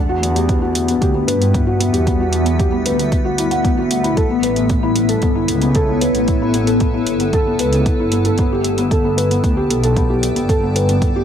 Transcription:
Already playing: E2 B3 D4 D5
0.09 F#4
0.22 B3 E5, closed hi-hat
0.35 G4, closed hi-hat
0.48 B3, kick, closed hi-hat
0.61 G3 F#4
0.75 closed hi-hat
0.88 B3, closed hi-hat
1.01 D2 G4, kick, closed hi-hat
1.14 B3
1.28 G2 B4, closed hi-hat
1.41 B3, closed hi-hat
1.54 kick, closed hi-hat
1.67 F#4
1.80 B3, closed hi-hat
1.93 E2 G4, closed hi-hat
2.06 B3, kick, closed hi-hat
2.20 F#4
2.33 closed hi-hat
2.45 B3, closed hi-hat
2.59 G4, kick, closed hi-hat
2.72 B3
2.85 D2 B4, closed hi-hat
2.99 B3, closed hi-hat
3.12 kick, closed hi-hat
3.25 F#4
3.38 E4, closed hi-hat
3.51 F#5, closed hi-hat
3.64 D2 B3, kick, closed hi-hat
3.77 F#4
3.91 closed hi-hat
4.03 E4, closed hi-hat
4.17 A1 A4, kick, closed hi-hat
4.30 B3 A4
4.39 C#5, closed hi-hat
4.43 B4
4.56 B3, closed hi-hat
4.69 kick, closed hi-hat
4.83 E4
4.96 B3, closed hi-hat
5.09 A4, closed hi-hat
5.22 G1 B3, kick, closed hi-hat
5.35 E4
5.48 C#2, closed hi-hat
5.62 B3, closed hi-hat
5.75 A4, kick, closed hi-hat
5.89 B3
6.01 B4, closed hi-hat
6.14 A1 B3, closed hi-hat
6.28 kick, closed hi-hat
6.42 E4
6.54 B3, closed hi-hat
6.67 A4, closed hi-hat
6.80 B3, kick, closed hi-hat
6.94 E4
7.07 G1, closed hi-hat
7.20 B3, closed hi-hat
7.33 A4, kick, closed hi-hat
7.47 B3
7.59 C#2 B4, closed hi-hat
7.73 B3, closed hi-hat
7.86 kick, closed hi-hat
7.99 G1 E4
8.12 B3, closed hi-hat
8.25 A4, closed hi-hat
8.38 G1 B3, kick, closed hi-hat
8.52 G4
8.59 G5
8.64 closed hi-hat
8.78 B3, closed hi-hat
8.90 A4 D5, kick, closed hi-hat
9.04 B3
9.17 B4, closed hi-hat
9.31 B3, closed hi-hat
9.43 D2, kick, closed hi-hat
9.57 G4
9.70 B1 B3, closed hi-hat
9.84 A4, closed hi-hat
9.96 B3, kick, closed hi-hat
10.10 G4
10.23 closed hi-hat
10.36 G1 B3, closed hi-hat
10.49 A4, kick, closed hi-hat
10.63 B3
10.76 B4, closed hi-hat
10.89 B3, closed hi-hat
11.02 kick, closed hi-hat
11.16 G4

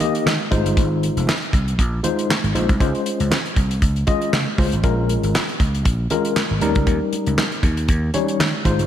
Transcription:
0.00 A#3 D#4 G4 D#5, closed hi-hat, muted conga, low conga
0.15 closed hi-hat
0.26 D#3, snare, clap, high conga
0.51 G#1 G#3 D#4 F4 C5, kick, closed hi-hat, high conga
0.66 G1, closed hi-hat
0.77 G#1, kick, closed hi-hat, muted conga
1.03 closed hi-hat
1.17 F1, closed hi-hat
1.27 snare, clap, high conga
1.42 closed hi-hat
1.53 C2, kick, closed hi-hat
1.68 closed hi-hat
1.79 A#1, kick, closed hi-hat
2.03 G#3 D#4 F4 C5, closed hi-hat, muted conga, low conga
2.19 closed hi-hat
2.30 snare, clap, high conga
2.44 G#1, closed hi-hat
2.54 A#1 G#3 D#4 F4 C5, closed hi-hat, high conga
2.69 C2, kick, closed hi-hat
2.80 C#2 G#3 C#4 F4 C5, kick, closed hi-hat, muted conga
2.95 closed hi-hat
3.06 closed hi-hat
3.20 C#2, closed hi-hat
3.31 snare, clap, high conga
3.45 closed hi-hat
3.56 C2, kick, closed hi-hat
3.71 closed hi-hat
3.82 C#2, kick, closed hi-hat
3.96 closed hi-hat
4.07 G#3 C#4 F4 D#5, kick, closed hi-hat, muted conga, low conga
4.22 closed hi-hat
4.33 C#3, snare, clap, high conga
4.58 C#2 G#3 C#4 F4 C5, kick, open hi-hat, high conga
4.72 G#1, closed hi-hat
4.83 A#1 G#3 C#4 F4 A#4, kick, closed hi-hat, muted conga
5.09 closed hi-hat, muted conga
5.23 G#1, closed hi-hat
5.34 snare, clap, high conga
5.49 closed hi-hat
5.60 C#2, kick, closed hi-hat
5.75 closed hi-hat
5.85 A#1, kick, closed hi-hat
6.10 G#3 C#4 F4 A#4, closed hi-hat, muted conga, low conga
6.25 closed hi-hat
6.36 snare, clap, high conga
6.51 G#1
6.61 D#2 G3 C#4 D#4 A#4, closed hi-hat, high conga
6.75 C#2, kick, closed hi-hat
6.87 D#2, kick, closed hi-hat, muted conga
7.13 closed hi-hat, muted conga
7.26 C#2, closed hi-hat
7.38 snare, clap, high conga
7.52 closed hi-hat
7.63 D#2, kick, closed hi-hat
7.77 closed hi-hat
7.88 D#2, kick, closed hi-hat
8.14 G3 C#4 D#4 C#5, closed hi-hat, muted conga, low conga
8.28 closed hi-hat
8.40 D#3, snare, clap, high conga
8.65 G#1 G#3 D#4 F4 C5, kick, closed hi-hat, high conga
8.79 G1, closed hi-hat

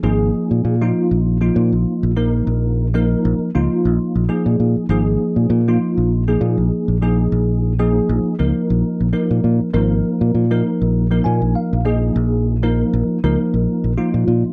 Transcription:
0.03 G#1 F3 A#3 D#4 G#4
0.34 muted fingered electric bass stroke
0.51 A#2
0.65 A#2
0.81 F3 A#3 D#4 F4
1.11 A#1
1.41 F3 A#3 D#4 F4
1.56 A#2
1.72 A#1
2.03 A#1
2.16 F3 A#3 D#4 A#4
2.47 A#1
2.94 F3 A#3 D#4 A#4
3.25 A#1
3.39 muted fingered electric bass stroke
3.55 C#2 F3 A#3 D#4 F4
3.85 A#1
4.15 A#1
4.29 F3 A#3 D#4 G#4
4.46 A#2
4.60 A#2
4.76 muted fingered electric bass stroke
4.89 G#1 F3 A#3 D#4 G#4
5.20 muted fingered electric bass stroke
5.36 A#2
5.50 A#2
5.68 F3 A#3 D#4 F4
5.98 A#1
6.28 F3 A#3 D#4 G#4
6.41 A#2
6.58 A#1
6.88 A#1
7.02 F3 A#3 D#4 G#4
7.32 A#1
7.79 F3 A#3 D#4 G#4
8.09 A#1
8.23 muted fingered electric bass stroke
8.39 C#2 F3 A#3 D#4 A#4
8.70 A#1
9.00 A#1
9.13 F3 A#3 D#4 A#4
9.31 A#2
9.44 A#2
9.61 muted fingered electric bass stroke
9.74 G#1 F3 A#3 D#4 A#4
10.05 muted fingered electric bass stroke
10.21 A#2
10.35 A#2
10.50 F3 A#3 D#4 A#4
10.81 A#1
11.11 F3 A#3 D#4 A#4
11.24 A#2 G#5
11.42 A#1
11.55 F5
11.73 A#1
11.85 F3 A#3 D#4 G#4 D#5
12.16 A#1
12.63 F3 A#3 D#4 A#4
12.93 A#1
13.07 muted fingered electric bass stroke
13.24 C#2 F3 A#3 D#4 A#4
13.54 A#1
13.84 A#1
13.97 F3 A#3 D#4 F4
14.14 A#2
14.28 A#2
14.44 muted fingered electric bass stroke

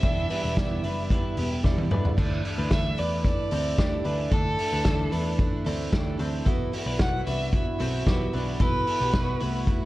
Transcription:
Already playing: E5
0.03 E1 D3 E3 G3 B3 D4 E4 A4, kick, closed hi-hat
0.29 G3 B3 D4 E4 B4, open hi-hat
0.43 E1
0.56 E1 D3 E3 G3 B3 E4 G4 D5, kick, snare, closed hi-hat
0.83 F#1 G3 B3 D4 E4 B4, open hi-hat
1.10 D3 G3 B3 D4 E4 B4, kick, closed hi-hat
1.37 E1 G3 B3 E4 G4, open hi-hat
1.63 E1 D3 E3 G3 B3 D4 E4 A4, kick, snare
1.78 high tom
1.90 E1 G3 B3 D4 E4 B4, mid tom
2.05 floor tom
2.17 D2 D3 E3 A3 D4 E4 A4, kick, crash
2.43 A3 D4 E4, open hi-hat
2.58 D2 D4 B4
2.70 D2 D3 E3 A3 D4 E4 A4 E5, kick, snare, closed hi-hat
2.97 E2 A3 D4 E4 B4 D5, open hi-hat
3.24 E3 A3 D4 E4 D5, kick, closed hi-hat
3.51 D2 A3 C4 D4 E4 A4, open hi-hat
3.78 D2 D3 E3 A3 D4 E4 G4, kick, snare, closed hi-hat
4.04 D2 A3 D4 E4 B4, open hi-hat
4.31 D2 D3 E3 A3 D4 E4 A4, kick, closed hi-hat
4.58 A3 D4 E4, open hi-hat
4.72 D2 D4 B4
4.85 D2 D3 E3 A3 D4 E4 A4, kick, snare, closed hi-hat
5.11 E2 A3 D4 E4 B4, open hi-hat
5.38 E3 A3 D4 E4, kick, closed hi-hat
5.64 D2 A3 C4 D4 E4 A4, open hi-hat
5.91 D2 D3 E3 A3 D4 E4 G4, kick, snare, closed hi-hat
6.18 D2 A3 C4 D4 E4 A4, open hi-hat
6.45 B1 B2 E3 B3 E4 F#4 A4, kick, closed hi-hat
6.72 B3 E4 F#4, open hi-hat
6.86 B1 D4 B4
6.98 B1 B2 E3 B3 E4 F#4 A4 F#5, kick, snare, closed hi-hat
7.26 C2 B3 D4 E4 F#4 B4 E5, open hi-hat
7.52 E3 B3 E4 F#4 E5, kick, closed hi-hat
7.79 B1 B3 C4 E4 F#4 A4, open hi-hat
8.06 B1 B2 E3 B3 E4 F#4 G4, kick, snare, closed hi-hat
8.32 B1 B3 D4 E4 F#4 B4, open hi-hat
8.60 B1 B2 E3 B3 E4 F#4 A4 B4, kick, closed hi-hat
8.86 B3 E4 F#4, open hi-hat
9.00 B1 B3 G4
9.13 B1 B2 E3 B3 E4 F#4, kick, snare, closed hi-hat
9.40 C2 A3 B3 E4 F#4, open hi-hat
9.66 E3 B3 E4 F#4, kick, closed hi-hat

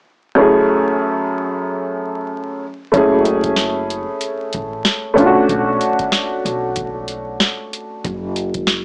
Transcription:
0.35 F#2 A3 C#4
0.39 E4 G#4
2.92 F#1 A3 C#4 E4, kick, closed hi-hat
2.97 G#4
3.25 closed hi-hat
3.44 kick, closed hi-hat
3.56 snare, closed hi-hat
3.90 closed hi-hat
4.21 closed hi-hat
4.53 A1, kick, closed hi-hat
4.85 snare, closed hi-hat
5.14 B1 A3 C#4 D4, kick
5.18 F4, closed hi-hat
5.26 F#4
5.49 B1, kick, closed hi-hat
5.81 closed hi-hat
5.99 kick, closed hi-hat
6.12 snare, closed hi-hat
6.45 B1, closed hi-hat
6.76 kick, closed hi-hat
7.08 closed hi-hat
7.40 snare, closed hi-hat
7.73 closed hi-hat
8.04 F#1, kick, closed hi-hat
8.36 closed hi-hat
8.54 kick, closed hi-hat
8.67 snare, closed hi-hat

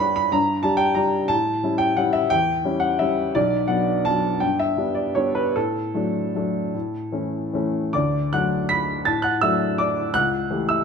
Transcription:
Already playing: G2 B4 C#5
0.00 G3 D4 G4 B5
0.16 B5
0.32 G2 A#5
0.63 G3 D4 G4 A5
0.77 G5
0.95 G3 D4 G4 A#5
1.28 A2 A5
1.63 G3 C#4 E4
1.78 G5
1.97 G3 C#4 E4 F#5
2.13 E5
2.30 E2 G5
2.64 G3 C#4 E4
2.80 F#5
2.99 G3 C#4 E4 E5
3.35 B1 D5
3.68 F#3 B3 D4 F#5
4.05 F#3 B3 D4 A5
4.40 G2 G5
4.59 E5
4.77 G3 B3 D4
4.95 D5
5.15 G3 B3 D4 C#5
5.35 B4
5.56 A2 A4
5.94 F#3 A3 D4
6.35 F#3 A3 D4
6.74 A2
7.12 E3 A3 C#4
7.53 E3 A3 C#4
7.93 D2 D5 D6
8.33 F#3 A3 D4 F#5 F#6
8.69 B5 B6
9.05 A2 A5 A6
9.22 F#5 F#6
9.41 F#3 A3 D4 E5 E6
9.78 D5 D6
10.14 C#2 F#5 F#6
10.51 E3 A3 G4
10.69 E5 E6

